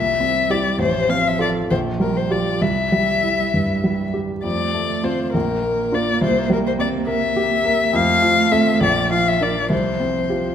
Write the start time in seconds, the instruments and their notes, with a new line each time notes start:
Already playing: grand piano C2, cello G3, violin E5
0.20 grand piano C4
0.50 grand piano E4 G4, violin D5
0.79 grand piano A1, cello F3, violin C5
1.09 grand piano C4, violin F5
1.27 violin E5
1.39 grand piano F4 A4, violin D5
1.69 grand piano A#1, cello F3, violin C5
2.00 grand piano G3, violin A#4
2.17 violin C5
2.30 grand piano F4 G4, violin D5
2.61 grand piano C2, cello G3, violin E5
2.92 grand piano G3
3.23 grand piano E4
3.54 grand piano G2
3.84 grand piano G3
4.14 grand piano G4
4.44 grand piano F2, cello A3, violin D5
4.74 grand piano A3
5.03 grand piano C4 F4, violin C5
5.33 grand piano A#1, cello A#3, violin A#4
5.62 grand piano A#3
5.92 grand piano D4 F4, violin D5
6.21 grand piano C2, violin C5
6.50 grand piano G3, violin A#4
6.67 violin C5
6.79 grand piano C4, violin D5
7.07 grand piano A#4, violin E5
7.37 grand piano G4
7.65 grand piano A#4
7.93 grand piano F2, cello A3, violin F5
8.22 grand piano F3
8.52 grand piano C4 A4, violin E5
8.80 grand piano A#1, cello F3, violin D5
9.10 grand piano F3, violin F5
9.28 violin E5
9.41 grand piano D4 A#4, violin D5
9.70 grand piano C2, cello F3, violin C5
10.00 grand piano C4
10.29 grand piano F4 G4